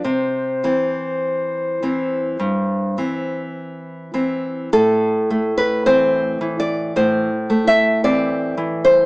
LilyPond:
<<
  \new Staff \with { instrumentName = "Clarinet" } { \time 4/4 \key c \major \tempo 4 = 52 c''2. r4 | \key a \minor r1 | }
  \new Staff \with { instrumentName = "Nylon-string guitar" } { \time 4/4 \key c \major << { r1 | \key a \minor a'8. b'16 \tuplet 3/2 { c''4 d''8 c''4 e''8 } d''8. c''16 | } \\ { c8 <e c'>4 <e c'>8 g,8 <e c'>4 <e c'>8 | a,8 a8 <e c'>8 e8 a,8 a8 <e c'>8 e8 | } >> }
>>